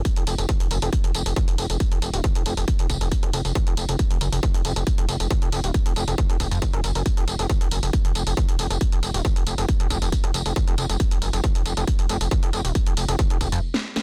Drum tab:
HH |xxoxxxoxxxoxxxox|xxoxxxoxxxoxxxoo|xxoxxxoxxxoxxxox|xxoxxxoxxxoxxxoo|
TB |x-xxx-xxx-xxx-xx|x-xxx-xxx-xxx-xx|x-xxx-xxx-xxx-xx|x-xxx-xxx-xxx-xx|
SD |----------------|----------------|----------------|----------------|
BD |o---o---o---o---|o---o---o-o-o---|o---o---o---o---|o---o---o-o-o---|

HH |xxoxxxoxxxoxxxox|xxoxxxoxxxoxxxoo|xxoxxxoxxxoxxxox|xxoxxxoxxxox----|
TB |x-xxx-xxx-xxx-xx|x-xxx-xxx-xxx-xx|x-xxx-xxx-xxx-xx|x-xxx-xxx-xx----|
SD |----------------|----------------|----------------|-------------o-o|
BD |o---o---o---o---|o---o---o-o-o---|o---o---o---o---|o---o---o-o-----|